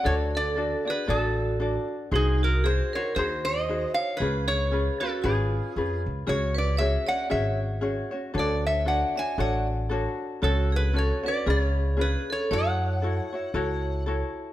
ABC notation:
X:1
M:4/4
L:1/8
Q:"Swing" 1/4=116
K:C#phr
V:1 name="Resonator guitar played with a steel bar"
c d2 B A3 z | G ^A ^B c B ^d2 ^e | B c2 A G3 z | c d e f e z3 |
d e f g f z3 | A B c d c2 B c | f6 z2 |]
V:2 name="Vibraphone"
A A2 G F3 z | ^D F G ^A G ^B2 c | G G2 F ^E3 z | G B c d c z3 |
A c d e d z3 | F G A B G2 G A | c6 z2 |]
V:3 name="Ukulele"
[DFAd]2 [DFAd] [DFd] [DFAd]2 [DFAd]2 | [^DFG^B]2 [DFGB] [DFB] [DFGB]2 [DFGB]2 | [C^EGB]2 [CEGB] [CEB] [CEGB]2 [CEGB]2 | [CFGc]2 [CFGc] [CFc] [CFGc]2 [CFGc] [CFc] |
[DFAc]2 [DFAc] [DFc] [DFAc]2 [DFAc]2 | [CFAc]2 [CFAc] [CFc] [C^EGB]2 [CEGB]2 | [EFAc]2 [EFAc] [EFc] [EFAc]2 [EFAc]2 |]
V:4 name="Upright bass" clef=bass
D,,4 A,,,4 | ^B,,,4 ^D,,4 | C,,4 G,,,2 ^E,, C,, | C,,4 G,,,4 |
D,,4 A,,,4 | C,,4 C,,4 | F,,4 C,,4 |]